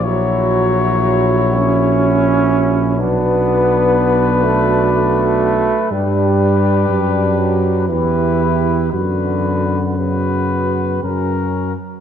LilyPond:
<<
  \new Staff \with { instrumentName = "Cornet" } { \time 3/4 \key fis \phrygian \tempo 4 = 61 cis''2~ cis''8 r8 | b'2. | b'2 b'4 | b'4 b'4 ais'8 r8 | }
  \new Staff \with { instrumentName = "French horn section" } { \time 3/4 \key fis \phrygian fis'2. | fis'2. | g'2 g'4 | fis'4 fis'4 fis'8 r8 | }
  \new Staff \with { instrumentName = "Trombone section" } { \time 3/4 \key fis \phrygian e'2. | d'2. | d'2 e'4 | b4 b4 cis'8 r8 | }
  \new Staff \with { instrumentName = "Trombone" } { \clef bass \time 3/4 \key fis \phrygian fis4. cis'4. | b4. a8 a4 | g4. fis8 e8 r8 | d4 cis4. r8 | }
  \new Staff \with { instrumentName = "Tuba" } { \clef bass \time 3/4 \key fis \phrygian bes,,2. | b,,2. | g,4 fis,4 e,4 | fis,2 fis,8 r8 | }
>>